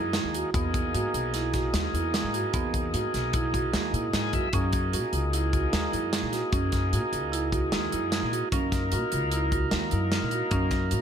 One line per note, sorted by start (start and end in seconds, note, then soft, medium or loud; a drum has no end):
0.00 0.20 F#2 medium
0.00 0.50 A#3 medium
0.00 0.50 D#4 medium
0.00 0.23 E4 medium
0.00 0.50 G#4 medium
0.13 snare loud
0.13 closed hi-hat medium
0.24 0.41 D#2 medium
0.34 0.49 F#4 medium
0.34 closed hi-hat medium
0.53 0.96 E2 medium
0.53 4.49 A#3 medium
0.53 0.83 B3 medium
0.53 4.49 D#4 medium
0.53 4.49 G#4 medium
0.53 kick loud
0.53 closed hi-hat medium
0.74 kick medium
0.74 closed hi-hat medium
0.94 1.03 G#2 medium
0.94 1.23 F#4 medium
0.94 closed hi-hat medium
1.14 1.66 B1 medium
1.14 closed hi-hat medium
1.34 1.49 E4 medium
1.34 snare soft
1.34 closed hi-hat medium
1.54 1.83 F#4 medium
1.54 kick medium
1.54 snare soft
1.54 closed hi-hat medium
1.73 1.91 D#2 medium
1.73 snare loud
1.73 closed hi-hat medium
1.93 2.20 E2 medium
1.93 2.23 E4 medium
1.93 closed hi-hat medium
2.14 snare loud
2.14 closed hi-hat medium
2.24 2.41 G#2 medium
2.34 2.48 F#4 medium
2.34 closed hi-hat medium
2.54 2.95 E2 medium
2.54 2.82 B3 medium
2.54 kick loud
2.54 closed hi-hat medium
2.74 kick medium
2.74 closed hi-hat medium
2.94 3.02 G#2 medium
2.94 3.22 F#4 medium
2.94 closed hi-hat medium
3.14 3.66 B1 medium
3.14 snare soft
3.14 closed hi-hat medium
3.33 3.48 E4 medium
3.33 kick loud
3.33 closed hi-hat medium
3.54 3.82 F#4 medium
3.54 kick medium
3.54 closed hi-hat medium
3.74 3.91 D#2 medium
3.74 snare loud
3.74 closed hi-hat medium
3.93 4.11 A#2 medium
3.93 4.22 E4 medium
3.93 closed hi-hat medium
4.13 4.31 G#2 medium
4.13 4.33 G#5 medium
4.13 snare loud
4.13 closed hi-hat medium
4.33 4.51 F#2 medium
4.33 4.48 F#4 medium
4.33 4.53 E5 medium
4.33 kick medium
4.33 closed hi-hat medium
4.53 4.95 F#2 medium
4.53 8.49 A#3 medium
4.53 4.82 C#4 medium
4.53 8.49 D#4 medium
4.53 8.49 G#4 medium
4.53 kick loud
4.53 closed hi-hat medium
4.73 kick medium
4.73 closed hi-hat medium
4.93 5.02 A#2 medium
4.93 5.21 F#4 medium
4.93 closed hi-hat medium
5.13 5.65 C#2 medium
5.13 closed hi-hat medium
5.33 5.47 E4 medium
5.33 closed hi-hat medium
5.53 5.82 F#4 medium
5.53 kick medium
5.53 closed hi-hat medium
5.73 5.90 D#2 medium
5.73 snare loud
5.73 closed hi-hat medium
5.92 6.19 F#2 medium
5.92 6.21 E4 medium
5.92 closed hi-hat medium
6.13 snare loud
6.13 closed hi-hat medium
6.23 6.40 A#2 medium
6.32 6.47 F#4 medium
6.32 snare soft
6.32 closed hi-hat medium
6.52 6.94 F#2 medium
6.52 6.81 C#4 medium
6.52 kick loud
6.52 closed hi-hat medium
6.72 kick medium
6.72 snare soft
6.72 closed hi-hat medium
6.93 7.01 A#2 medium
6.93 7.21 F#4 medium
6.93 closed hi-hat medium
7.13 7.64 C#2 medium
7.13 closed hi-hat medium
7.32 7.46 E4 medium
7.32 closed hi-hat medium
7.52 7.81 F#4 medium
7.52 kick medium
7.52 closed hi-hat medium
7.72 7.90 D#2 medium
7.72 snare loud
7.72 closed hi-hat medium
7.92 8.19 F#2 medium
7.92 8.20 E4 medium
7.92 closed hi-hat medium
8.12 snare loud
8.12 closed hi-hat medium
8.23 8.40 A#2 medium
8.32 8.46 F#4 medium
8.32 closed hi-hat medium
8.52 8.94 F#2 medium
8.52 11.01 A#3 medium
8.52 8.81 C#4 medium
8.52 11.01 D#4 medium
8.52 11.01 A#4 medium
8.52 kick loud
8.52 closed hi-hat medium
8.72 kick medium
8.72 snare soft
8.72 closed hi-hat medium
8.92 9.01 A#2 medium
8.92 9.21 F#4 medium
8.92 closed hi-hat medium
9.12 9.64 C#2 medium
9.12 closed hi-hat medium
9.32 9.47 E4 medium
9.32 closed hi-hat medium
9.52 9.81 F#4 medium
9.52 kick medium
9.52 closed hi-hat medium
9.71 9.89 D#2 medium
9.71 snare loud
9.71 closed hi-hat medium
9.91 10.18 F#2 medium
9.91 10.20 E4 medium
9.91 closed hi-hat medium
10.12 snare loud
10.12 closed hi-hat medium
10.22 10.39 A#2 medium
10.31 10.47 F#4 medium
10.31 closed hi-hat medium
10.51 10.93 F#2 loud
10.51 10.80 C#4 medium
10.51 kick loud
10.51 closed hi-hat medium
10.71 kick medium
10.71 snare soft
10.71 closed hi-hat medium
10.91 11.00 A#2 medium
10.91 11.01 F#4 medium
10.91 closed hi-hat medium